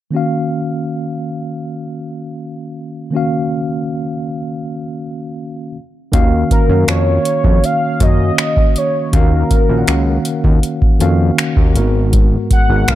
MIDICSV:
0, 0, Header, 1, 5, 480
1, 0, Start_track
1, 0, Key_signature, -6, "minor"
1, 0, Tempo, 750000
1, 86, Time_signature, 4, 2, 24, 8
1, 8288, End_track
2, 0, Start_track
2, 0, Title_t, "Soft synth lead"
2, 0, Program_c, 0, 80
2, 4170, Note_on_c, 0, 70, 89
2, 4391, Note_off_c, 0, 70, 0
2, 4414, Note_on_c, 0, 73, 106
2, 4895, Note_on_c, 0, 77, 111
2, 4905, Note_off_c, 0, 73, 0
2, 5138, Note_on_c, 0, 75, 112
2, 5148, Note_off_c, 0, 77, 0
2, 5617, Note_on_c, 0, 73, 93
2, 5627, Note_off_c, 0, 75, 0
2, 5856, Note_on_c, 0, 70, 96
2, 5866, Note_off_c, 0, 73, 0
2, 6811, Note_off_c, 0, 70, 0
2, 8017, Note_on_c, 0, 78, 104
2, 8252, Note_on_c, 0, 77, 117
2, 8261, Note_off_c, 0, 78, 0
2, 8288, Note_off_c, 0, 77, 0
2, 8288, End_track
3, 0, Start_track
3, 0, Title_t, "Tine electric piano"
3, 0, Program_c, 1, 4
3, 68, Note_on_c, 1, 51, 67
3, 77, Note_on_c, 1, 58, 60
3, 87, Note_on_c, 1, 61, 62
3, 95, Note_on_c, 1, 66, 60
3, 106, Note_on_c, 1, 77, 73
3, 213, Control_c, 1, 64, 127
3, 1971, Note_off_c, 1, 51, 0
3, 1975, Note_off_c, 1, 58, 0
3, 1981, Note_off_c, 1, 61, 0
3, 1985, Note_off_c, 1, 66, 0
3, 1988, Note_on_c, 1, 51, 65
3, 1990, Note_off_c, 1, 77, 0
3, 1998, Note_on_c, 1, 58, 61
3, 2006, Note_on_c, 1, 61, 62
3, 2017, Note_on_c, 1, 66, 63
3, 2026, Note_on_c, 1, 77, 77
3, 3651, Note_off_c, 1, 51, 0
3, 3656, Note_off_c, 1, 58, 0
3, 3660, Note_off_c, 1, 61, 0
3, 3665, Note_off_c, 1, 66, 0
3, 3670, Note_off_c, 1, 77, 0
3, 3693, Control_c, 1, 64, 0
3, 3915, Note_on_c, 1, 51, 104
3, 3919, Note_on_c, 1, 58, 94
3, 3924, Note_on_c, 1, 61, 94
3, 3929, Note_on_c, 1, 66, 92
3, 3933, Note_on_c, 1, 77, 115
3, 4060, Control_c, 1, 64, 127
3, 4249, Note_off_c, 1, 51, 0
3, 4251, Note_off_c, 1, 58, 0
3, 4254, Note_off_c, 1, 61, 0
3, 4256, Note_off_c, 1, 66, 0
3, 4258, Note_off_c, 1, 77, 0
3, 4276, Note_on_c, 1, 51, 68
3, 4281, Note_on_c, 1, 58, 60
3, 4285, Note_on_c, 1, 61, 59
3, 4291, Note_on_c, 1, 66, 63
3, 4294, Note_on_c, 1, 77, 75
3, 4719, Note_off_c, 1, 51, 0
3, 4721, Note_off_c, 1, 58, 0
3, 4724, Note_off_c, 1, 61, 0
3, 4726, Note_off_c, 1, 66, 0
3, 4728, Note_off_c, 1, 77, 0
3, 4755, Note_on_c, 1, 51, 68
3, 4760, Note_on_c, 1, 58, 59
3, 4764, Note_on_c, 1, 61, 56
3, 4770, Note_on_c, 1, 66, 56
3, 4774, Note_on_c, 1, 77, 71
3, 5089, Note_off_c, 1, 51, 0
3, 5091, Note_off_c, 1, 58, 0
3, 5093, Note_off_c, 1, 61, 0
3, 5096, Note_off_c, 1, 66, 0
3, 5099, Note_off_c, 1, 77, 0
3, 5117, Note_on_c, 1, 51, 69
3, 5121, Note_on_c, 1, 58, 66
3, 5126, Note_on_c, 1, 61, 65
3, 5131, Note_on_c, 1, 66, 64
3, 5136, Note_on_c, 1, 73, 80
3, 5778, Note_off_c, 1, 51, 0
3, 5781, Note_off_c, 1, 58, 0
3, 5783, Note_off_c, 1, 61, 0
3, 5786, Note_off_c, 1, 66, 0
3, 5788, Note_off_c, 1, 73, 0
3, 5835, Note_on_c, 1, 51, 87
3, 5840, Note_on_c, 1, 58, 80
3, 5845, Note_on_c, 1, 61, 81
3, 5850, Note_on_c, 1, 66, 80
3, 5855, Note_on_c, 1, 77, 102
3, 6169, Note_off_c, 1, 51, 0
3, 6172, Note_off_c, 1, 58, 0
3, 6174, Note_off_c, 1, 61, 0
3, 6177, Note_off_c, 1, 66, 0
3, 6179, Note_off_c, 1, 77, 0
3, 6197, Note_on_c, 1, 51, 69
3, 6203, Note_on_c, 1, 58, 64
3, 6207, Note_on_c, 1, 61, 64
3, 6211, Note_on_c, 1, 66, 64
3, 6216, Note_on_c, 1, 77, 64
3, 6252, Note_off_c, 1, 77, 0
3, 6257, Note_on_c, 1, 78, 75
3, 6968, Note_off_c, 1, 51, 0
3, 6971, Note_off_c, 1, 58, 0
3, 6973, Note_off_c, 1, 61, 0
3, 6975, Note_off_c, 1, 66, 0
3, 6998, Note_off_c, 1, 78, 0
3, 7035, Note_on_c, 1, 51, 88
3, 7040, Note_on_c, 1, 58, 78
3, 7044, Note_on_c, 1, 61, 82
3, 7049, Note_on_c, 1, 66, 76
3, 7054, Note_on_c, 1, 77, 93
3, 7478, Note_off_c, 1, 51, 0
3, 7481, Note_off_c, 1, 58, 0
3, 7483, Note_off_c, 1, 61, 0
3, 7485, Note_off_c, 1, 66, 0
3, 7488, Note_off_c, 1, 77, 0
3, 7516, Note_on_c, 1, 44, 90
3, 7522, Note_on_c, 1, 56, 78
3, 7527, Note_on_c, 1, 59, 78
3, 7530, Note_on_c, 1, 66, 77
3, 7535, Control_c, 1, 64, 0
3, 7535, Note_on_c, 1, 70, 92
3, 7638, Control_c, 1, 64, 127
3, 8069, Note_off_c, 1, 44, 0
3, 8072, Note_off_c, 1, 56, 0
3, 8074, Note_off_c, 1, 59, 0
3, 8076, Note_off_c, 1, 66, 0
3, 8078, Note_off_c, 1, 70, 0
3, 8115, Note_on_c, 1, 44, 66
3, 8120, Note_on_c, 1, 56, 60
3, 8124, Note_on_c, 1, 59, 65
3, 8130, Note_on_c, 1, 66, 63
3, 8134, Note_on_c, 1, 70, 77
3, 8288, Note_off_c, 1, 44, 0
3, 8288, Note_off_c, 1, 56, 0
3, 8288, Note_off_c, 1, 59, 0
3, 8288, Note_off_c, 1, 66, 0
3, 8288, Note_off_c, 1, 70, 0
3, 8288, End_track
4, 0, Start_track
4, 0, Title_t, "Analog synth bass"
4, 0, Program_c, 2, 38
4, 3925, Note_on_c, 2, 39, 105
4, 4122, Note_off_c, 2, 39, 0
4, 4283, Note_on_c, 2, 42, 93
4, 4382, Note_off_c, 2, 42, 0
4, 4403, Note_on_c, 2, 41, 88
4, 4601, Note_off_c, 2, 41, 0
4, 4763, Note_on_c, 2, 41, 84
4, 4862, Note_off_c, 2, 41, 0
4, 5123, Note_on_c, 2, 42, 86
4, 5321, Note_off_c, 2, 42, 0
4, 5845, Note_on_c, 2, 39, 117
4, 6042, Note_off_c, 2, 39, 0
4, 6204, Note_on_c, 2, 34, 90
4, 6303, Note_off_c, 2, 34, 0
4, 6325, Note_on_c, 2, 37, 94
4, 6522, Note_off_c, 2, 37, 0
4, 6683, Note_on_c, 2, 39, 86
4, 6782, Note_off_c, 2, 39, 0
4, 7044, Note_on_c, 2, 41, 93
4, 7241, Note_off_c, 2, 41, 0
4, 7404, Note_on_c, 2, 39, 80
4, 7525, Note_on_c, 2, 32, 97
4, 7534, Note_off_c, 2, 39, 0
4, 7918, Note_off_c, 2, 32, 0
4, 8125, Note_on_c, 2, 32, 89
4, 8223, Note_off_c, 2, 32, 0
4, 8245, Note_on_c, 2, 35, 99
4, 8288, Note_off_c, 2, 35, 0
4, 8288, End_track
5, 0, Start_track
5, 0, Title_t, "Drums"
5, 3926, Note_on_c, 9, 36, 108
5, 3926, Note_on_c, 9, 42, 63
5, 3990, Note_off_c, 9, 36, 0
5, 3990, Note_off_c, 9, 42, 0
5, 4166, Note_on_c, 9, 36, 80
5, 4167, Note_on_c, 9, 42, 61
5, 4230, Note_off_c, 9, 36, 0
5, 4231, Note_off_c, 9, 42, 0
5, 4403, Note_on_c, 9, 42, 65
5, 4406, Note_on_c, 9, 26, 103
5, 4467, Note_off_c, 9, 42, 0
5, 4470, Note_off_c, 9, 26, 0
5, 4642, Note_on_c, 9, 42, 66
5, 4706, Note_off_c, 9, 42, 0
5, 4763, Note_on_c, 9, 36, 94
5, 4827, Note_off_c, 9, 36, 0
5, 4888, Note_on_c, 9, 42, 67
5, 4952, Note_off_c, 9, 42, 0
5, 5122, Note_on_c, 9, 42, 64
5, 5123, Note_on_c, 9, 36, 76
5, 5186, Note_off_c, 9, 42, 0
5, 5187, Note_off_c, 9, 36, 0
5, 5365, Note_on_c, 9, 42, 60
5, 5366, Note_on_c, 9, 26, 106
5, 5429, Note_off_c, 9, 42, 0
5, 5430, Note_off_c, 9, 26, 0
5, 5483, Note_on_c, 9, 36, 87
5, 5547, Note_off_c, 9, 36, 0
5, 5605, Note_on_c, 9, 42, 65
5, 5669, Note_off_c, 9, 42, 0
5, 5844, Note_on_c, 9, 42, 68
5, 5845, Note_on_c, 9, 36, 112
5, 5908, Note_off_c, 9, 42, 0
5, 5909, Note_off_c, 9, 36, 0
5, 6084, Note_on_c, 9, 42, 59
5, 6085, Note_on_c, 9, 36, 87
5, 6148, Note_off_c, 9, 42, 0
5, 6149, Note_off_c, 9, 36, 0
5, 6320, Note_on_c, 9, 42, 65
5, 6323, Note_on_c, 9, 26, 107
5, 6384, Note_off_c, 9, 42, 0
5, 6387, Note_off_c, 9, 26, 0
5, 6560, Note_on_c, 9, 42, 62
5, 6624, Note_off_c, 9, 42, 0
5, 6682, Note_on_c, 9, 36, 94
5, 6746, Note_off_c, 9, 36, 0
5, 6805, Note_on_c, 9, 42, 67
5, 6869, Note_off_c, 9, 42, 0
5, 6924, Note_on_c, 9, 36, 95
5, 6988, Note_off_c, 9, 36, 0
5, 7043, Note_on_c, 9, 42, 65
5, 7107, Note_off_c, 9, 42, 0
5, 7286, Note_on_c, 9, 26, 103
5, 7286, Note_on_c, 9, 42, 64
5, 7350, Note_off_c, 9, 26, 0
5, 7350, Note_off_c, 9, 42, 0
5, 7403, Note_on_c, 9, 36, 84
5, 7467, Note_off_c, 9, 36, 0
5, 7524, Note_on_c, 9, 42, 64
5, 7588, Note_off_c, 9, 42, 0
5, 7763, Note_on_c, 9, 42, 67
5, 7765, Note_on_c, 9, 36, 116
5, 7827, Note_off_c, 9, 42, 0
5, 7829, Note_off_c, 9, 36, 0
5, 8004, Note_on_c, 9, 42, 61
5, 8005, Note_on_c, 9, 36, 91
5, 8068, Note_off_c, 9, 42, 0
5, 8069, Note_off_c, 9, 36, 0
5, 8242, Note_on_c, 9, 42, 62
5, 8245, Note_on_c, 9, 26, 102
5, 8288, Note_off_c, 9, 26, 0
5, 8288, Note_off_c, 9, 42, 0
5, 8288, End_track
0, 0, End_of_file